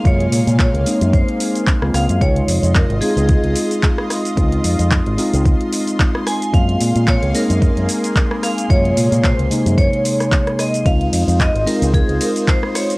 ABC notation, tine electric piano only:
X:1
M:4/4
L:1/16
Q:"Swing 16ths" 1/4=111
K:Db
V:1 name="Tine electric piano"
[C,A,B,F]6 [A,B,CE]6- [A,B,CE] [A,B,CF]3 | [C,A,EF]6 [A,CEF]8- [A,CEF]2 | [A,CEF]6 [A,CEF]8- [A,CEF]2 | [A,B,CF]6 [A,B,CE]8- [A,B,CE]2 |
[C,A,B,F]6 [C,A,B,E]8- [C,A,B,E]2 | [A,CEF]6 [A,CEF]8- [A,CEF]2 |]